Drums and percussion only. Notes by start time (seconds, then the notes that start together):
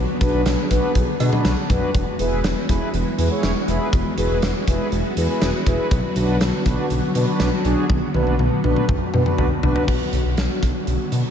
0.21 kick, closed hi-hat
0.46 snare, closed hi-hat
0.71 kick, closed hi-hat
0.95 kick, closed hi-hat
1.20 closed hi-hat, cowbell
1.33 mid tom
1.45 snare, closed hi-hat
1.70 kick, closed hi-hat, mid tom
1.94 kick, closed hi-hat
2.19 closed hi-hat
2.44 snare, closed hi-hat
2.69 kick, closed hi-hat
2.94 closed hi-hat
3.18 closed hi-hat
3.43 snare, closed hi-hat
3.68 closed hi-hat
3.93 kick, closed hi-hat
4.18 closed hi-hat
4.42 snare, closed hi-hat
4.67 kick, closed hi-hat
4.92 closed hi-hat
5.17 closed hi-hat
5.42 snare, closed hi-hat
5.67 kick, closed hi-hat
5.91 kick, closed hi-hat
6.16 closed hi-hat
6.41 snare, closed hi-hat
6.66 kick, closed hi-hat
6.90 closed hi-hat
7.15 closed hi-hat
7.40 snare, closed hi-hat
7.65 closed hi-hat
7.90 kick, high tom
8.14 high tom
8.27 high tom
8.39 mid tom
8.64 mid tom
8.76 mid tom
8.89 kick, mid tom
9.14 mid tom
9.26 mid tom
9.38 floor tom
9.63 floor tom
9.76 floor tom
9.88 kick, crash
10.13 closed hi-hat
10.37 snare, closed hi-hat
10.63 kick, closed hi-hat
10.87 closed hi-hat
11.12 closed hi-hat